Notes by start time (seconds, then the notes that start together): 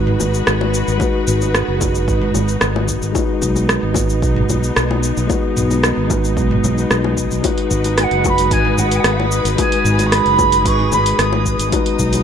Already playing: G#1 G#3 D#4 F#4 B4
0.07 mid tom
0.20 G#1, high bongo, cabasa
0.34 cabasa
0.47 G#1, cross-stick, cabasa
0.61 high bongo
0.74 cabasa
0.88 G#1, cabasa
0.98 G#3 D#4, kick, high bongo, cabasa
1.02 F#4 B4
1.27 G#1, mid tom, cabasa
1.41 high bongo, cabasa
1.54 cross-stick, cabasa
1.68 F#1
1.79 G#3 D#4, kick, high bongo, cabasa
1.83 F#4 B4
1.95 cabasa
2.08 G#1, kick, cabasa
2.22 mid tom
2.34 G#1, high bongo, cabasa
2.48 cabasa
2.61 G#1, cross-stick, cabasa
2.76 high bongo
2.88 kick, cabasa
3.02 G#1, cabasa
3.12 G#3 D#4 F#4, kick, high bongo, cabasa
3.16 B3 B4
3.42 B1, kick, cabasa
3.56 high bongo, cabasa
3.69 cross-stick, cabasa
3.83 G#1
3.92 G#3 D#4 F#4, kick, high bongo, cabasa
3.98 B4
4.09 cabasa
4.22 B1, kick, cabasa
4.36 mid tom
4.49 B1, high bongo, cabasa
4.63 cabasa
4.76 B1, cross-stick, cabasa
4.91 high bongo
5.03 cabasa
5.17 B1, cabasa
5.27 G#3 D#4 F#4, kick, high bongo, cabasa
5.33 B4
5.57 B1, mid tom, cabasa
5.71 high bongo, cabasa
5.83 cross-stick, cabasa
5.97 G#1
6.07 G#3 D#4 F#4, kick, high bongo, cabasa
6.13 B4
6.24 cabasa
6.37 B1, kick, cabasa
6.51 mid tom
6.64 B1, high bongo, cabasa
6.75 G#3 D#4 F#4, cabasa
6.80 B4
6.91 B1, cross-stick, cabasa
7.04 high bongo
7.17 kick, cabasa
7.31 B1, cabasa
7.41 G#3 D#4 F#4 B4, kick, open hi-hat, high bongo, cabasa
7.45 B4 D#6
7.58 open hi-hat
7.71 G#1, kick, cabasa
7.84 open hi-hat, high bongo, cabasa
7.98 G#5, cross-stick, open hi-hat, cabasa
8.03 F#5
8.11 F#1, open hi-hat
8.21 G#3 D#4, kick, cabasa
8.25 F#4 B4 C#6, high bongo
8.29 B5
8.38 open hi-hat, cabasa
8.51 G#1 G#5, kick, open hi-hat, cabasa
8.65 mid tom
8.72 G#5
8.78 G#1 F#5, high bongo, cabasa
8.91 open hi-hat, cabasa
8.96 F#5 G#5
9.04 G#1, cross-stick, open hi-hat, cabasa
9.13 E5 F#5
9.20 high bongo
9.31 cabasa
9.45 G#1, open hi-hat, cabasa
9.56 G#3 D#4 F#4 G#4 G#5, kick, open hi-hat, high bongo, cabasa
9.61 B4
9.72 open hi-hat
9.85 G#1, mid tom, cabasa
9.99 open hi-hat, high bongo, cabasa
10.06 C#6
10.12 B5, cross-stick, open hi-hat, cabasa
10.26 F#1, open hi-hat
10.36 G#3 D#4 F#4, kick, high bongo, cabasa
10.42 B4
10.52 open hi-hat, cabasa
10.65 G#1 C#6, kick, open hi-hat, cabasa
10.79 mid tom
10.92 G#1 B5, high bongo, cabasa
11.06 open hi-hat, cabasa
11.19 G#1, cross-stick, open hi-hat, cabasa
11.33 high bongo
11.46 kick, cabasa
11.59 G#1, open hi-hat, cabasa
11.70 G#3 B3 D#4 F#4, kick, open hi-hat, high bongo, cabasa
11.76 B4
11.86 open hi-hat
11.99 B1, kick, cabasa
12.13 open hi-hat, high bongo, cabasa